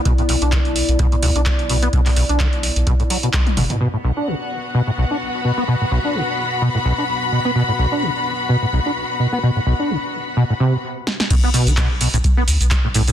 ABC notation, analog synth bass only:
X:1
M:4/4
L:1/16
Q:"Swing 16ths" 1/4=128
K:Bm
V:1 name="Analog synth bass" clef=bass
B,,, z2 B,,,4 B,,, z2 D,, B,,,4- B,,, | z B,,, z B,,,4 B,,, z6 F,,, z | z16 | z16 |
z16 | z16 | B,,, z2 B,,,4 B,,, z2 D,, B,,,4- B,,, |]